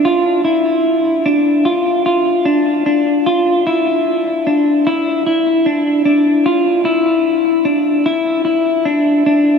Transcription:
\new Staff \with { instrumentName = "Clean electric guitar" } { \time 4/4 \key d \minor \tempo 4 = 75 f'8 e'4 d'8 f'8 f'8 d'8 d'8 | f'8 e'4 d'8 e'8 e'8 d'8 d'8 | f'8 e'4 d'8 e'8 e'8 d'8 d'8 | }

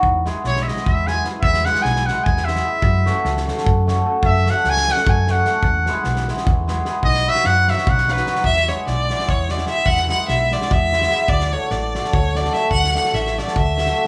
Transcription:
<<
  \new Staff \with { instrumentName = "Trumpet" } { \time 7/8 \key b \mixolydian \tempo 4 = 149 r4 cis''16. e''32 dis''8 e''8 gis''8 r8 | e''8 fis''8 gis''8 fis''8 gis''8 e''4~ | e''4. r2 | e''8 fis''8 gis''8 fis''8 gis''8 fis''4~ |
fis''4. r2 | dis''8 e''8 fis''8 e''8 fis''8 b'4 | \key e \mixolydian r2. r8 | r2. r8 |
r2. r8 | r2. r8 | }
  \new Staff \with { instrumentName = "Violin" } { \time 7/8 \key b \mixolydian r2. r8 | r2. r8 | r2. r8 | r2. r8 |
r2. r8 | r2. r8 | \key e \mixolydian e''8 cis''8 d''4 cis''8 d''8 e''8 | fis''8 fis''8 e''8 d''8 e''4. |
d''8 cis''8 d''4 cis''8 d''8 e''8 | fis''8 fis''8 e''8 d''8 e''4. | }
  \new Staff \with { instrumentName = "Hammered dulcimer" } { \time 7/8 \key b \mixolydian r8 <gis b e' gis'>8 r8 <gis b e' gis'>8 r8 <gis b e' gis'>8 <gis b e' gis'>8 | r8 <gis b e' gis'>8 r8 <gis b e' gis'>8 r8 <gis b e' gis'>8 <gis b e' gis'>8 | r8 <a cis' fis' a'>8 r8 <a cis' fis' a'>8 r8 <a cis' fis' a'>8 <a cis' fis' a'>8 | r8 <a cis' fis' a'>8 r8 <a cis' fis' a'>8 r8 <a cis' fis' a'>8 <a cis' fis' a'>8 |
r8 <gis b e' gis'>8 r8 <gis b e' gis'>8 r8 <gis b e' gis'>8 <gis b e' gis'>8 | r8 <fis b dis' fis'>8 r8 <fis b dis' fis'>8 r8 <fis b dis' fis'>8 <fis b dis' fis'>8 | \key e \mixolydian r8 <gis b e' gis'>8 r8 <gis b e' gis'>8 r8 <gis b e' gis'>8 <gis b e' gis'>8 | r8 <gis b e' gis'>8 r8 <gis b e' gis'>8 r8 <gis b e' gis'>8 <gis b e' gis'>8 |
r8 <a d' fis' a'>8 r8 <a d' fis' a'>8 r8 <a d' fis' a'>8 <a d' fis' a'>8 | r8 <a d' fis' a'>8 r8 <a d' fis' a'>8 r8 <a d' fis' a'>8 <a d' fis' a'>8 | }
  \new Staff \with { instrumentName = "Fingered electric bass" } { \clef bass \time 7/8 \key b \mixolydian e,4 b,,4 e,4. | e,4 b,,4 e,4. | fis,4 cis,4 fis,4. | fis,4 cis,4 fis,4. |
e,4 b,,4 e,4. | b,,4 fis,4 b,,4. | \key e \mixolydian e,4 b,,4 e,4. | e,4 b,,4 e,4. |
d,4 a,,4 d,4. | d,4 a,,4 d,4. | }
  \new DrumStaff \with { instrumentName = "Drums" } \drummode { \time 7/8 bd8 sn8 sn16 sn16 sn16 sn16 bd8 sn8 sn8 | bd16 sn16 sn16 sn16 sn16 sn16 sn8 bd16 sn16 sn16 sn8. | bd8 sn8 sn16 sn16 sn16 sn16 bd8 sn4 | bd8 sn8 sn16 sn16 sn16 sn16 bd8 sn8 sn8 |
bd8 sn8 sn16 sn16 sn16 sn16 bd8 sn8 sn8 | bd16 sn8 sn16 sn8 sn16 sn16 bd16 sn16 sn16 sn16 sn16 sn16 | bd16 sn16 sn8 sn8 sn16 sn16 bd8 sn16 sn16 sn8 | bd16 sn16 sn8 sn8 sn16 sn16 bd8 sn16 sn16 sn8 |
bd16 sn8. sn8 sn16 sn16 bd8 sn16 sn16 sn8 | bd16 sn16 sn16 sn16 sn16 sn16 sn16 sn16 bd8 sn16 sn8. | }
>>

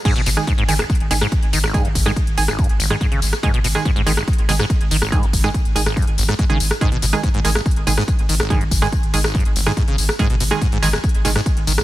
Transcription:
<<
  \new Staff \with { instrumentName = "Synth stab" } { \clef bass \time 4/4 \key gis \minor \tempo 4 = 142 <dis gis gis'>16 r8 <dis gis gis'>16 r8 <dis gis gis'>16 r8. <dis gis gis'>16 r4 r16 | <dis gis gis'>16 r8 <dis gis gis'>16 r8 <dis gis gis'>16 r4 <dis gis gis'>16 r4 | <dis gis gis'>16 r8 <dis gis gis'>16 r8 <dis gis gis'>16 r8. <dis gis gis'>16 r4 r16 | <dis gis gis'>16 r8 <dis gis gis'>16 r8 <dis gis gis'>16 r4. <dis gis gis'>16 r8 |
<dis gis gis'>16 r8 <dis gis gis'>16 r8 <dis gis gis'>16 r8. <dis gis gis'>16 r4 r16 | <dis gis gis'>16 r8 <dis gis gis'>16 r8 <dis gis gis'>16 r4 <dis gis gis'>16 r4 | <dis gis gis'>16 r8 <dis gis gis'>16 r8 <dis gis gis'>16 r8. <dis gis gis'>16 r4 r16 | }
  \new Staff \with { instrumentName = "Acid bass" } { \clef bass \time 4/4 \key gis \minor gis,16 b,16 b,16 r16 gis,16 gis,16 dis16 gis,,16 r8 b,16 gis,16 r8 dis16 gis,,16 | gis,16 fis,16 r16 gis,16 r8. gis,,16 gis,16 r16 gis,,16 gis,16 gis,16 cis16 r8 | gis,16 b,16 b,16 r16 gis,16 gis,16 dis16 gis,,16 r8 b,16 gis,16 r8 dis16 gis,,16 | gis,16 fis,16 r16 gis,16 r8. gis,,16 gis,16 r16 gis,,16 gis,16 gis,16 cis16 r8 |
gis,16 b,16 b,16 r16 gis,16 gis,16 dis16 gis,,16 r8 b,16 gis,16 r8 dis16 gis,,16 | gis,16 fis,16 r16 gis,16 r8. gis,,16 gis,16 r16 gis,,16 gis,16 gis,16 cis16 r8 | gis,16 b,16 b,16 r16 gis,16 gis,16 dis16 gis,,16 r8 b,16 gis,16 r8 dis16 gis,,16 | }
  \new Staff \with { instrumentName = "Sub bass" } { \clef bass \time 4/4 \key gis \minor r16 gis,,16 gis,,16 r8 gis,,16 gis,,16 r8 gis,,16 gis,,16 r8 gis,,16 gis,,16 r16 | r16 gis,,16 gis,,16 r8 gis,,16 gis,,16 r8 gis,,16 gis,,16 r8 gis,,16 gis,,16 r16 | r16 gis,,16 gis,,16 r8 gis,,16 gis,,16 r8 gis,,16 gis,,16 r8 gis,,16 gis,,16 r16 | r16 gis,,16 gis,,16 r8 gis,,16 gis,,16 r8 gis,,16 gis,,16 r8 gis,,16 gis,,16 r16 |
r16 gis,,16 gis,,16 r8 gis,,16 gis,,16 r8 gis,,16 gis,,16 r8 gis,,16 gis,,16 r16 | r16 gis,,16 gis,,16 r8 gis,,16 gis,,16 r8 gis,,16 gis,,16 r8 gis,,16 gis,,16 r16 | r16 gis,,16 gis,,16 r8 gis,,16 gis,,16 r8 gis,,16 gis,,16 r8 gis,,16 gis,,16 r16 | }
  \new DrumStaff \with { instrumentName = "Drums" } \drummode { \time 4/4 <cymc hh bd tamb>16 hh16 <hho cymr tamb>16 <hh ss tamb>16 <hh bd tamb>16 hh16 <hho cymr tamb>16 <hh ss tamb>16 <hh bd tamb>32 hh32 hh16 <hho cymr tamb>16 <hh ss tamb>16 <hh bd tamb>16 hh16 <hho cymr tamb>16 <hh ss tamb>16 | <hh bd tamb>16 hh16 <hho bd cymr tamb>16 <hh ss tamb>16 <hh bd tamb>16 hh16 <hho cymr tamb>16 <hh ss tamb>16 <hh bd tamb>32 hh32 hh16 <hho cymr tamb>16 <ss tamb>16 <hh bd tamb>16 hh16 <hho cymr tamb>16 <hh ss tamb>16 | <hh bd tamb>16 hh16 <hho cymr tamb>16 <ss tamb>16 <hh bd tamb>16 hh16 <hho cymr tamb>16 <hh ss tamb>16 <hh bd tamb>32 hh32 hh16 <hho cymr tamb>16 <hh ss tamb>16 <hh bd tamb>16 hh16 <hho cymr tamb>16 <ss tamb>16 | <hh bd tamb>16 hh16 <hho bd cymr tamb>16 <ss tamb>16 <hh bd tamb>16 hh16 <hho cymr tamb>16 <hh ss tamb>16 <hh bd tamb>32 hh32 hh16 <hho cymr tamb>16 <hh ss tamb>16 <hh bd tamb>16 hh16 <hho cymr tamb>16 <hh ss tamb>16 |
<hh bd tamb>16 hh16 <hho cymr tamb>16 <ss tamb>16 <hh bd tamb>16 hh16 <hho cymr tamb>16 <ss tamb>16 <hh bd tamb>32 hh32 hh16 <hho cymr tamb>16 <hh ss tamb>16 <hh bd tamb>16 hh16 <hho cymr tamb>16 <hh ss tamb>16 | <hh bd tamb>16 hh16 <hho bd cymr tamb>16 <hh ss>16 <hh bd tamb>16 hh16 <hho cymr tamb>16 <hh ss tamb>16 <hh bd tamb>32 hh32 hh16 <hho cymr tamb>16 <ss tamb>16 <hh bd tamb>16 hh16 <hho cymr tamb>16 <ss tamb>16 | <hh bd tamb>16 hh16 <hho cymr tamb>16 <ss tamb>16 <hh bd tamb>16 hh16 <hho cymr tamb>16 <hh ss tamb>16 <hh bd tamb>32 hh32 hh16 <hho cymr tamb>16 <hh ss tamb>16 <hh bd tamb>16 hh16 <hho cymr tamb>16 <hh ss tamb>16 | }
>>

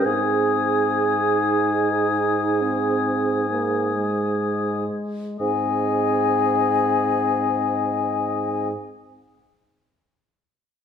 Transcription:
<<
  \new Staff \with { instrumentName = "Flute" } { \time 4/4 \key aes \major \tempo 4 = 44 ees'''2.~ ees'''8 r8 | aes''1 | }
  \new Staff \with { instrumentName = "Oboe" } { \time 4/4 \key aes \major aes''2.~ aes''8 r8 | ees''1 | }
  \new Staff \with { instrumentName = "Clarinet" } { \time 4/4 \key aes \major aes'2. r4 | aes'1 | }
  \new Staff \with { instrumentName = "French horn" } { \time 4/4 \key aes \major c'4 ees'4 \tuplet 3/2 { c'4 bes8 } aes4 | c'1 | }
  \new Staff \with { instrumentName = "Bassoon" } { \clef bass \time 4/4 \key aes \major aes,2.~ aes,8 r8 | aes,1 | }
>>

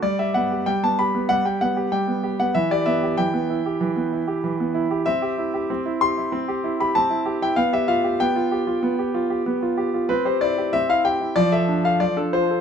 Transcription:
\new Staff \with { instrumentName = "Grand piano" } { \time 4/4 \key e \minor \tempo 4 = 95 << { d''16 e''16 fis''8 g''16 a''16 b''8 fis''16 g''16 fis''8 g''8. fis''16 | e''16 d''16 e''8 g''2. | \key c \major e''4. c'''4~ c'''16 b''16 a''8. g''16 | f''16 e''16 f''8 g''2~ g''8 r8 |
b'16 c''16 d''8 e''16 f''16 g''8 d''16 e''8 f''16 d''16 a'16 c''8 | } \\ { g16 g'16 b16 g'16 g16 b16 g'16 b16 g16 g'16 b16 g'16 g16 b16 g'16 b16 | e16 g'16 b16 g'16 e16 b16 e'16 g'16 e16 b16 e'16 g'16 e16 b16 e'16 g'16 | c'16 g'16 e'16 g'16 c'16 e'16 g'16 e'16 c'16 g'16 e'16 g'16 c'16 e'16 g'16 e'16 | b16 g'16 f'16 g'16 b16 f'16 g'16 f'16 b16 g'16 f'16 g'16 b16 f'16 g'16 f'16 |
c'16 g'16 e'16 g'16 c'16 e'16 g'16 e'16 f16 a'16 d'16 a'16 f16 d'16 f'16 a'16 | } >> }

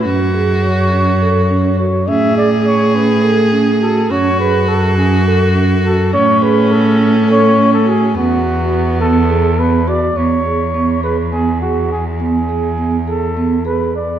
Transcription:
<<
  \new Staff \with { instrumentName = "Flugelhorn" } { \time 7/8 \key e \mixolydian \tempo 4 = 104 b'16 r8. cis''2 cis''8 | e''8 d''8 cis''8 b'8 r4 a'8 | cis''8 b'8 a'8 gis'8 r4 a'8 | cis''8 b'8 a'4 cis''8. a'16 gis'8 |
fis'4. a'4 b'8 d''8 | cis''4. b'8 gis'8 fis'8 gis'8 | gis'4. a'4 b'8 d''8 | }
  \new Staff \with { instrumentName = "Viola" } { \time 7/8 \key e \mixolydian fis'2. r8 | gis'2.~ gis'8 | fis'2.~ fis'8 | cis'2.~ cis'8 |
b2. r8 | r2. r8 | r2. r8 | }
  \new Staff \with { instrumentName = "Vibraphone" } { \time 7/8 \key e \mixolydian cis'8 gis'4 cis'8 a'8 cis'8 fis'8 | cis'8 gis'4 cis'8 a'8 cis'8 fis'8 | cis'8 gis'4 cis'8 a'8 cis'8 fis'8 | cis'8 gis'4 cis'8 a'8 cis'8 fis'8 |
b8 fis'4 b8 gis'8 b8 fis'8 | b8 gis'8 b8 gis'8 b8 gis'4 | b8 gis'8 b8 gis'8 b8 gis'4 | }
  \new Staff \with { instrumentName = "Cello" } { \clef bass \time 7/8 \key e \mixolydian fis,2.~ fis,8 | a,2.~ a,8 | fis,2.~ fis,8 | a,2.~ a,8 |
e,2.~ e,8 | e,2.~ e,8~ | e,2.~ e,8 | }
>>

